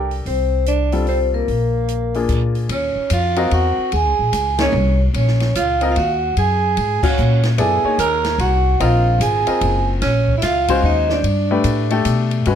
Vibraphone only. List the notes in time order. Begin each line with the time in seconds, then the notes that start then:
0.27 C5
0.68 D5
1.09 C5
1.34 A#4
2.73 C#5
3.13 F5
3.54 F#5
3.96 G#5
4.61 C#5
5.18 C#5
5.58 F5
5.92 F5
6.00 F#5
6.38 G#5
7.05 C#5
7.59 G#5
8.01 A#5
8.41 F#5
8.82 F5
9.22 G#5
10.03 C#5
10.40 E5
10.46 F5
10.86 D#5
11.13 D5